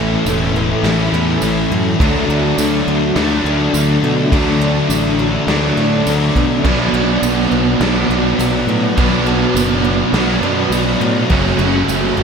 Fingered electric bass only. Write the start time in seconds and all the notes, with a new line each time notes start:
Already playing: A1
0.26 E1
0.83 A1
1.12 E2
1.42 A1
1.71 F#2
2.00 D2
2.28 D2
2.58 D2
2.87 D2
3.16 D2
3.44 D2
3.73 D2
4.03 B2
4.32 D2
4.89 A1
5.47 D2
5.77 A2
6.06 D2
6.35 B2
6.64 B1
6.93 B1
7.22 B1
7.51 B1
7.80 B1
8.09 B1
8.39 B1
8.67 A2
8.97 B1
9.54 F#1
10.13 B1
10.41 F#2
10.70 B1
11.01 A2
11.31 F#1
11.59 F#1
11.88 F#1
12.17 F#1